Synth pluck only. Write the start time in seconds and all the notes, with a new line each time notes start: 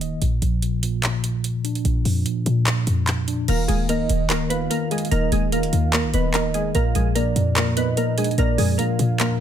3.48 A#3 A#4
3.68 G#3 G#4
3.89 A#3 A#4
4.30 A#3 A#4
4.50 B3 B4
4.70 A#3 A#4
4.91 G#3 G#4
5.11 A#3 A#4
5.32 G#3 G#4
5.52 A#3 A#4
5.93 A#3 A#4
6.14 B3 B4
6.34 A#3 A#4
6.54 G#3 G#4
6.75 A#3 A#4
6.95 G#3 G#4
7.15 A#3 A#4
7.56 A#3 A#4
7.77 B3 B4
7.97 A#3 A#4
8.18 G#3 G#4
8.38 A#3 A#4
8.58 G#3 G#4
8.78 A#3 A#4
9.20 A#3 A#4